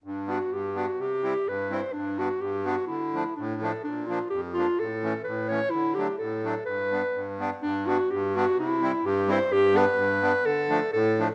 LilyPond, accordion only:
\new Staff \with { instrumentName = "Accordion" } { \clef bass \time 2/4 \key g \major \tempo 4 = 127 << { r8 <g b d'>8 r8 <g b d'>8 | r8 <g c' e'>8 r8 <g c' e'>8 | r8 <g b d'>8 r8 <g b d'>8 | r8 <f a d'>8 r8 <f a d'>8 |
r8 <f bes d'>8 r8 <f bes d'>8 | r8 <e a cis'>8 r8 <e a cis'>8 | r8 <fis a d'>8 r8 <fis a d'>8 | r8 <g b d'>8 r8 <g b d'>8 |
r8 <g b d'>8 r8 <g b d'>8 | r8 <g c' e'>8 r8 <g c' e'>8 | r8 <g b d'>8 r8 <g b d'>8 | r8 <f a d'>8 r8 <f a d'>8 | } \\ { g,4 g,4 | c4 g,4 | g,4 g,4 | d4 a,4 |
bes,4 f,4 | a,4 a,4 | d4 a,4 | g,4 g,4 |
g,4 g,4 | c4 g,4 | g,4 g,4 | d4 a,4 | } >> }